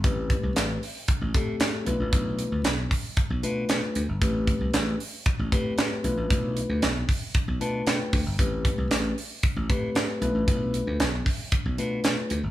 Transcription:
<<
  \new Staff \with { instrumentName = "Tine electric piano" } { \time 4/4 \key a \minor \tempo 4 = 115 << { r1 | r1 | r1 | r2 r8 a''8 g''4 |
r1 | r1 | } \\ { <a c' g' b'>4. r4 <a c' g' a'>4 <a d' f' b'>8~ | <a d' f' b'>4 r4. <a d' f' b'>4 r8 | <a c' g' b'>4. r4 <a c' g' b'>4 <a d' f' b'>8~ | <a d' f' b'>4 r4. <a d' f' b'>4 r8 |
<a c' g' b'>4. r4 <a c' g' b'>4 <a cis' d' f' b'>8~ | <a cis' d' f' b'>4 r4. <a d' f' b'>4 r8 | } >> }
  \new Staff \with { instrumentName = "Slap bass" } { \clef bass \time 4/4 \key a \minor a,,8. c,16 a,,8 r8. a,,16 a,8 a,16 r16 b,,16 a,,16 | b,,8. d,16 b,,8 r8. b,,16 b,8 b,16 r16 d,16 g,,16 | a,,8. c,16 a,,8 r8. a,,16 a,8 a,16 r16 b,,16 a,,16 | b,,8. d,16 b,,8 r8. b,,16 b,8 b,16 r16 d,16 g,,16 |
a,,8. c,16 a,,8 r8. a,,16 a,8 a,16 r16 b,,16 a,,16 | b,,8. d,16 b,,8 r8. b,,16 b,8 b,16 r16 d,16 g,,16 | }
  \new DrumStaff \with { instrumentName = "Drums" } \drummode { \time 4/4 <hh bd>8 <hh bd>8 <hc hh sn>8 hho8 <hh bd>8 <hh bd>8 <hc hh sn>8 hh8 | <hh bd>8 hh8 <hc hh sn>8 <hho bd>8 <hh bd>8 hh8 <hc hh sn>8 hh8 | <hh bd>8 <hh bd>8 <hc hh sn>8 hho8 <hh bd>8 <hh bd>8 <hc hh sn>8 hh8 | <hh bd>8 hh8 <hc hh sn>8 <hho bd>8 <hh bd>8 hh8 <hc hh sn>8 <hho bd>8 |
<hh bd>8 <hh bd>8 <hc hh sn>8 hho8 <hh bd>8 <hh bd>8 <hc hh sn>8 hh8 | <hh bd>8 hh8 <hc hh sn>8 <hho bd>8 <hh bd>8 hh8 <hc hh sn>8 hh8 | }
>>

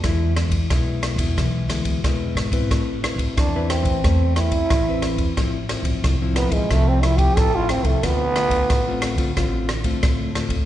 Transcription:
<<
  \new Staff \with { instrumentName = "Nylon-string guitar" } { \time 4/4 \key a \minor \tempo 4 = 90 << { <gis b e'>8 <gis b e'>16 r16 <gis b e'>8. <gis b e'>8. <gis b e'>8 <gis b e'>8. <c' e' b'>16~ | <c' e' b'>8 <c' e' b'>8. <c' e' b'>8. <c' e' b'>16 r16 <c' e' b'>8 r16 <c' e' b'>8. | <f c' e'>16 r16 <f c' e'>8. <f c' e'>8. <f c' e'>8 <f c' e'>8. <f c' e'>8. | <a c' f'>16 r16 <a f'>8. <a c' f'>8 <a c' f'>16 <a c' f'>8 r16 <a c' f'>8. <a c' f'>16 r16 | } \\ { e4 b,4 e4 b,4 | a4 e4 a4 e4 | a,4 a,4 a,4 a,4 | d4 a,4 d4 a,4 | } >> }
  \new Staff \with { instrumentName = "Trombone" } { \time 4/4 \key a \minor r1 | r4 d'8 c'4 e'4. | r4. b16 gis16 a16 c'16 e'16 g'16 a'16 f'16 c'16 a16 | b2 r2 | }
  \new Staff \with { instrumentName = "Upright bass" } { \clef bass \time 4/4 \key a \minor e,8. e,16 b,,8. e,16 b,,8 d,8 e,8 gis,8 | a,,8. a,,16 e,8. a,,16 e,4 a,,8. e,16 | a,,8. a,,16 c,8. a,,16 c,4 a,,8. c,16 | d,8. d,16 a,,8. d,16 a,,4 d,8. d,16 | }
  \new DrumStaff \with { instrumentName = "Drums" } \drummode { \time 4/4 <bd cymr ss>8 <cymr ss>16 <bd cymr>16 <bd cymr ss>8 <cymr ss>16 <bd cymr>16 <bd cymr ss>8 <cymr ss>16 <bd cymr>16 <bd cymr ss>8 <cymr ss>16 <bd cymr>16 | <bd cymr ss>8 <cymr ss>16 <bd cymr>16 <bd cymr ss>8 <cymr ss>16 <bd cymr>16 <bd cymr ss>8 <cymr ss>16 <bd cymr>16 <bd cymr ss>8 <cymr ss>16 <bd cymr>16 | <bd cymr ss>8 <cymr ss>16 <bd cymr>16 <bd cymr ss>8 <cymr ss>16 <bd cymr>16 <bd cymr ss>8 <cymr ss>16 <bd cymr>16 <bd cymr ss>8 <cymr ss>16 <bd cymr>16 | <bd cymr ss>8 <cymr ss>16 <bd cymr>16 <bd cymr ss>8 <cymr ss>16 <bd cymr>16 <bd cymr ss>8 <cymr ss>16 <bd cymr>16 <bd cymr ss>8 <cymr ss>16 <bd cymr>16 | }
>>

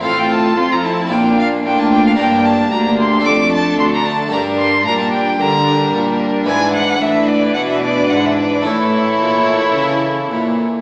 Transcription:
<<
  \new Staff \with { instrumentName = "Violin" } { \time 4/4 \key g \dorian \tempo 4 = 111 f''16 g''16 a''8 c'''16 bes''16 a''8 g''8 f''8 g''16 a''16 g''16 f''16 | g''8 a''8 bes''8 c'''8 d'''8 a''8 c'''16 bes''16 a''8 | bes''8 c'''8 bes''16 a''16 g''8 bes''4 r4 | gis''8 fis''8 e''8 d''8 fis''16 e''16 d''8 fis''16 e''16 d''8 |
cis''2.~ cis''8 r8 | }
  \new Staff \with { instrumentName = "Violin section" } { \time 4/4 \key g \dorian a'4 a'4 f'4 f'4 | g'4 g'4 a'2 | bes'4 bes'4 bes'2 | b'4 b'2. |
a'2.~ a'8 r8 | }
  \new Staff \with { instrumentName = "Violin section" } { \time 4/4 \key g \dorian f'4 f'8 e'8 d'4 d'4 | d'4 d'4 d'2 | d'4 d'4 d'2 | d'4 d'2. |
e'2.~ e'8 r8 | }
  \new Staff \with { instrumentName = "Harpsichord" } { \time 4/4 \key g \dorian <c' f' a'>2 <d' f' d''>2 | <d' bes' d''>2 <d' a' d''>2 | <d' g' d''>1 | <b e' d''>1 |
<a e' a'>1 | }
  \new Staff \with { instrumentName = "Harpsichord" } { \clef bass \time 4/4 \key g \dorian a,4 f,4 bes,4 a,4 | g,4 d,4 f,4 d,4 | g,4 bes,4 d4 bes,4 | gis,4 a,4 b,4 gis,4 |
a,4 bes,4 cis4 bes,4 | }
  \new Staff \with { instrumentName = "Viola section" } { \time 4/4 \key g \dorian c'4 c'4 bes4 bes4 | bes4 bes4 a2 | g4 g4 g2 | e4 e2. |
e2.~ e8 r8 | }
  \new Staff \with { instrumentName = "Cello section" } { \clef bass \time 4/4 \key g \dorian a,4 f,4 bes,4 a,4 | g,4 d,4 f,4 d,4 | g,4 bes,4 d4 bes,4 | gis,4 a,4 b,4 gis,4 |
a,4 bes,4 cis4 bes,4 | }
>>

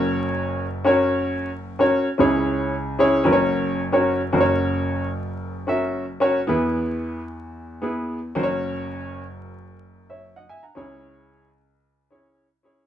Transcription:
<<
  \new Staff \with { instrumentName = "Grand piano" } { \time 4/4 \key fis \mixolydian \tempo 4 = 112 << { r1 | r1 | r1 | r1 |
r2 r8. <cis'' e''>8 <dis'' fis''>16 <e'' gis''>16 <fis'' ais''>16~ | <fis'' ais''>16 r2. r8. | } \\ { <cis' fis' ais' cis''>4 r8 <cis' fis' ais' cis''>4~ <cis' fis' ais' cis''>16 r8 <cis' fis' ais' cis''>8 r16 | <cis' e' gis' cis''>4 r8 <cis' e' gis' cis''>8 <cis' fis' ais' b' cis''>4 r16 <cis' fis' ais' cis''>8 r16 | <cis' fis' ais' bis' cis''>4~ <cis' fis' ais' bis' cis''>16 r4 r16 <cis' fis' ais' e''>8. r16 <cis' fis' ais' cis''>16 r16 | <b e' gis' b'>4~ <b e' gis' b'>16 r4 r16 <b e' gis' b'>8. r16 <cis' fis' ais' bis' cis''>8~ |
<cis' fis' ais' bis' cis''>4 r2. | <cis' e' gis' cis''>4~ <cis' e' gis' cis''>16 r4 r16 <cis' e' gis' cis''>8. r16 <cis' e' gis' cis''>16 r16 | } >> }
  \new Staff \with { instrumentName = "Grand piano" } { \clef bass \time 4/4 \key fis \mixolydian <fis,, fis,>2.~ <fis,, fis,>8 r8 | <cis, cis>2 <fis,, fis,>2 | <fis,, fis,>1 | <e, e>2.~ <e, e>8 <fis,, fis,>8~ |
<fis,, fis,>2.~ <fis,, fis,>8 r8 | <cis, cis>1 | }
>>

